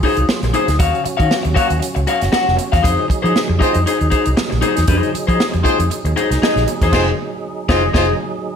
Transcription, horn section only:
1.56 A#3 C#4 F#4 C#5
3.61 G#3 C4 F4 C5
5.64 G#3 C4 F4 C5
6.93 G#3 C4 F4 C5
7.69 G#3 C4 F4 C5
7.94 G#3 C4 F4 C5

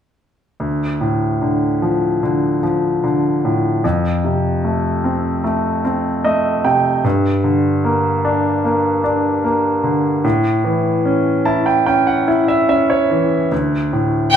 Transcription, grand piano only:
0.60 D2
1.01 A2
1.42 D3
1.82 F3
2.23 D3
2.63 F3
3.04 D3
3.45 A2
3.84 F2
4.24 C3
4.64 A3
5.04 C4
5.44 A3
5.85 C4
6.24 A3 D#5
6.64 C3 G5
7.04 G2
7.44 D3
7.84 A#3
8.25 D4
8.64 A#3
9.04 D4
9.44 A#3
9.84 D3
10.24 A2
10.64 E3
11.05 C#4
11.45 E4 A5
11.66 G5
11.86 C#4 G5
12.07 F#5
12.28 E4
12.48 E5
12.69 C#4 E5
12.90 C#5
13.10 E3
13.52 D2
13.93 A2

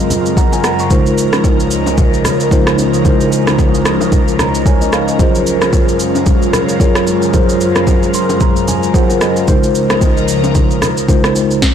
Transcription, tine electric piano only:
Already playing: F#3 F4 G#4 A4 A#4 D#5
0.38 F#5 A#5
0.53 G#5
0.64 F#5 A#5
0.80 C#6
0.90 C#3 G#3 D#4 F4 A#4 C5
2.51 C#3 G#3 D#4 F4 A#4 C5
3.05 C#3 G#3 D#4 E4 A#4 C5
3.12 F4
4.40 A#5
4.66 C#5 G#5
4.82 D#5
4.93 F5
5.09 D#5
5.19 F#3 F4 G#4 A#4 C5
6.80 F#3 F4 G#4 A#4 C#5
7.33 F#3 F4 G#4 A#4 C5
8.15 C6
8.41 A#5
8.68 G#5
8.94 F#3 F4 G#4 A#4 C5 F#5
9.22 D#5
9.48 C#3 G#3 D#4 E4 A#4 C5
9.55 F4
11.08 C#3 G#3 D#4 F4 A#4 C5

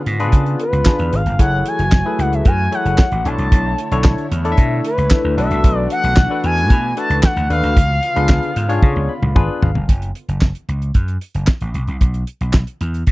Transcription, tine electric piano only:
0.20 D4 F4 G#4 B4
0.86 D4 F4 G#4 B4
1.39 E4 G#4 A4 C#5
2.05 E4 G#4 A4 B4
2.71 E4 G#4 A4 C#5
3.25 D4 E4 A4 C#5
3.92 D4 E4 A4 C#5
4.45 D4 E4 A4 D5
4.52 E5
5.11 D4 E4 A4 E5
5.38 D4 F#4 A4 B4
6.30 D4 F#4 A4 B4
6.97 D4 F#4 A4 B4
7.50 D4 F#4 A4 B4
8.16 D4 F4 G#4 B4
8.69 D4 F4 G#4 C#5
9.09 B5
9.35 D4 F4 G#4 B4 G#5
9.63 F5

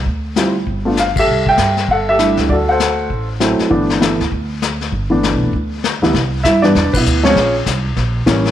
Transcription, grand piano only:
0.36 G3 C4 E4 F4
0.85 A3 B3 D4 F4
0.99 F5
1.19 G4 A4 E5
1.49 E5 G5
1.91 A4 F#5
2.09 G4 A4 E5
2.18 G3 A3 D4 E4
2.49 F#4 A4 D5
2.69 A4 C5 F#5
3.40 F#3 A3 C4 E4
3.70 E3 A3 B3 D4
4.00 E3 A3 B3 E4
5.10 E3 A3 B3 D4
6.02 C2 E3 G3 B3 E4
6.43 E4 E5
6.62 E3 G3 B3 D4 B4 D5
6.93 B3 E4 B4
7.23 F3 G#3 C4 C#4 C#5
7.27 C#4 F4 G#4
8.26 E3 G3 A#3 C#4

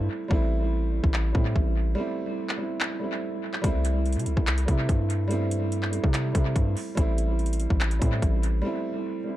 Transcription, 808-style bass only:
0.31 A1
1.04 A1
1.35 A2
1.56 A1
3.64 C2
4.16 C3
4.26 C2
4.37 C2
4.68 C3
4.89 G2
6.04 C3
6.35 C3
6.56 G2
6.97 A1
7.70 A1
8.02 A2
8.22 A1

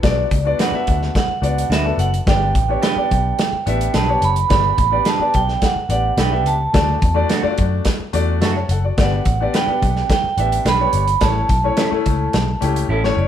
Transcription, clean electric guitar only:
0.59 D4 F#4 B4
1.70 D4 F#4 B4
2.82 D4 G4 B4
3.94 D4 G4 B4
5.06 D4 G4 B4
6.18 D4 G4 B4
7.29 A3 D4 F#4
8.41 A3 D4 F#4
9.53 D4 G4 B4
10.65 D4 G4 B4
11.77 C#4 E4 A4
12.89 C#4 E4 A4

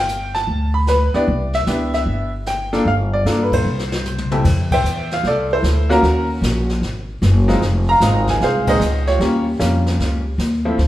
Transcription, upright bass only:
Already playing: G1
0.47 D2
1.14 muted upright bass stroke
1.27 C2
1.66 C#2
2.06 G1
2.85 G1
3.25 G2
3.64 C2
4.44 F2
4.83 E2
5.24 C2
5.63 D2
6.02 D#2
6.42 A#1
6.82 G#1
7.22 F#1
7.61 F1
8.00 G#1
8.40 C2
8.80 C#2
9.19 D#2
9.59 F2
9.99 C#2
10.38 D#2
10.78 D2

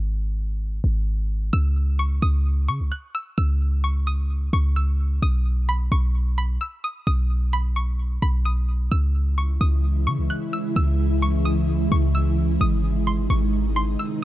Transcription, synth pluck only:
1.53 E6
1.99 C#6
2.22 D#6
2.68 C#6
2.92 F#6
3.15 E6
3.38 E6
3.84 C#6
4.07 D#6
4.53 C#6
4.76 E6
5.22 D#6
5.69 B5
5.92 C#6
6.38 B5
6.61 E6
6.84 D#6
7.07 D#6
7.53 B5
7.76 C#6
8.22 B5
8.45 D#6
8.91 E6
9.38 C#6
9.61 D#6
10.07 C#6
10.30 F#6
10.53 E6
10.76 E6
11.22 C#6
11.45 D#6
11.92 C#6
12.15 E6
12.61 D#6
13.07 C6
13.30 C#6
13.76 C6
13.99 E6

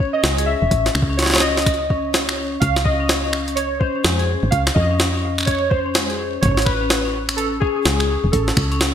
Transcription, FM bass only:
0.24 C#2
0.62 E1
0.71 A1
0.95 C#2
2.62 C#2
4.05 F2
4.43 G#1
4.52 C#2
4.76 F2
6.43 A1
7.85 C#2
8.24 E1
8.33 A1
8.57 C#2

